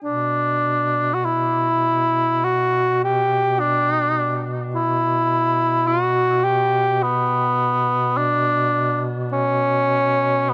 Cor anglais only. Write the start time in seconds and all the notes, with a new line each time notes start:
0.04 D4
1.14 F#4
1.25 E4
2.44 F#4
3.05 G4
3.60 D4
4.76 E4
5.87 F#4
6.44 G4
7.03 B3
8.17 D4
9.33 C#4
10.49 B3